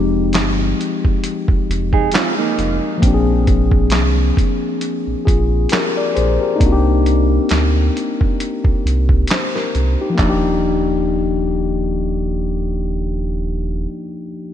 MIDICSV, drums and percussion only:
0, 0, Header, 1, 2, 480
1, 0, Start_track
1, 0, Key_signature, -3, "major"
1, 0, Tempo, 895522
1, 1621, Time_signature, 4, 2, 24, 8
1, 7792, End_track
2, 0, Start_track
2, 0, Title_t, "Drums"
2, 176, Note_on_c, 9, 42, 69
2, 188, Note_on_c, 9, 38, 96
2, 189, Note_on_c, 9, 39, 70
2, 230, Note_off_c, 9, 42, 0
2, 242, Note_off_c, 9, 38, 0
2, 242, Note_off_c, 9, 39, 0
2, 433, Note_on_c, 9, 42, 62
2, 486, Note_off_c, 9, 42, 0
2, 561, Note_on_c, 9, 36, 78
2, 614, Note_off_c, 9, 36, 0
2, 663, Note_on_c, 9, 42, 80
2, 716, Note_off_c, 9, 42, 0
2, 795, Note_on_c, 9, 36, 83
2, 848, Note_off_c, 9, 36, 0
2, 915, Note_on_c, 9, 42, 58
2, 969, Note_off_c, 9, 42, 0
2, 1033, Note_on_c, 9, 36, 76
2, 1086, Note_off_c, 9, 36, 0
2, 1134, Note_on_c, 9, 42, 74
2, 1154, Note_on_c, 9, 38, 100
2, 1154, Note_on_c, 9, 39, 85
2, 1187, Note_off_c, 9, 42, 0
2, 1207, Note_off_c, 9, 38, 0
2, 1208, Note_off_c, 9, 39, 0
2, 1386, Note_on_c, 9, 42, 60
2, 1440, Note_off_c, 9, 42, 0
2, 1620, Note_on_c, 9, 36, 92
2, 1623, Note_on_c, 9, 42, 85
2, 1674, Note_off_c, 9, 36, 0
2, 1676, Note_off_c, 9, 42, 0
2, 1861, Note_on_c, 9, 42, 55
2, 1863, Note_on_c, 9, 36, 92
2, 1915, Note_off_c, 9, 42, 0
2, 1916, Note_off_c, 9, 36, 0
2, 1991, Note_on_c, 9, 36, 84
2, 2045, Note_off_c, 9, 36, 0
2, 2091, Note_on_c, 9, 42, 68
2, 2102, Note_on_c, 9, 38, 93
2, 2103, Note_on_c, 9, 39, 73
2, 2144, Note_off_c, 9, 42, 0
2, 2156, Note_off_c, 9, 38, 0
2, 2157, Note_off_c, 9, 39, 0
2, 2343, Note_on_c, 9, 36, 83
2, 2350, Note_on_c, 9, 42, 55
2, 2397, Note_off_c, 9, 36, 0
2, 2404, Note_off_c, 9, 42, 0
2, 2579, Note_on_c, 9, 42, 80
2, 2633, Note_off_c, 9, 42, 0
2, 2825, Note_on_c, 9, 36, 85
2, 2831, Note_on_c, 9, 42, 60
2, 2879, Note_off_c, 9, 36, 0
2, 2885, Note_off_c, 9, 42, 0
2, 3052, Note_on_c, 9, 42, 81
2, 3072, Note_on_c, 9, 38, 101
2, 3072, Note_on_c, 9, 39, 73
2, 3105, Note_off_c, 9, 42, 0
2, 3125, Note_off_c, 9, 38, 0
2, 3126, Note_off_c, 9, 39, 0
2, 3305, Note_on_c, 9, 42, 57
2, 3358, Note_off_c, 9, 42, 0
2, 3540, Note_on_c, 9, 36, 94
2, 3542, Note_on_c, 9, 42, 75
2, 3593, Note_off_c, 9, 36, 0
2, 3595, Note_off_c, 9, 42, 0
2, 3785, Note_on_c, 9, 42, 59
2, 3839, Note_off_c, 9, 42, 0
2, 4016, Note_on_c, 9, 42, 68
2, 4028, Note_on_c, 9, 38, 83
2, 4028, Note_on_c, 9, 39, 62
2, 4070, Note_off_c, 9, 42, 0
2, 4081, Note_off_c, 9, 38, 0
2, 4082, Note_off_c, 9, 39, 0
2, 4271, Note_on_c, 9, 42, 61
2, 4325, Note_off_c, 9, 42, 0
2, 4400, Note_on_c, 9, 36, 79
2, 4453, Note_off_c, 9, 36, 0
2, 4504, Note_on_c, 9, 42, 73
2, 4557, Note_off_c, 9, 42, 0
2, 4634, Note_on_c, 9, 36, 87
2, 4687, Note_off_c, 9, 36, 0
2, 4753, Note_on_c, 9, 42, 56
2, 4807, Note_off_c, 9, 42, 0
2, 4872, Note_on_c, 9, 36, 75
2, 4926, Note_off_c, 9, 36, 0
2, 4971, Note_on_c, 9, 42, 82
2, 4991, Note_on_c, 9, 38, 98
2, 4992, Note_on_c, 9, 39, 80
2, 5025, Note_off_c, 9, 42, 0
2, 5045, Note_off_c, 9, 38, 0
2, 5045, Note_off_c, 9, 39, 0
2, 5123, Note_on_c, 9, 38, 32
2, 5176, Note_off_c, 9, 38, 0
2, 5225, Note_on_c, 9, 42, 54
2, 5278, Note_off_c, 9, 42, 0
2, 5459, Note_on_c, 9, 39, 72
2, 5461, Note_on_c, 9, 36, 84
2, 5513, Note_off_c, 9, 39, 0
2, 5514, Note_off_c, 9, 36, 0
2, 7792, End_track
0, 0, End_of_file